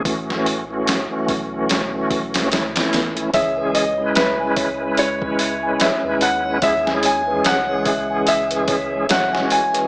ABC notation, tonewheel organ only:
X:1
M:4/4
L:1/16
Q:"Swing 16ths" 1/4=73
K:C#m
V:1 name="Tonewheel organ"
[E,A,CF]3 [E,A,CF]8- [E,A,CF] [E,A,CE]4 | [E,G,CG]3 [G,CEB]12- [G,CEB] | [G,CEG]3 [E,G,CG]8- [E,G,CG] [E,G,CF]4 |]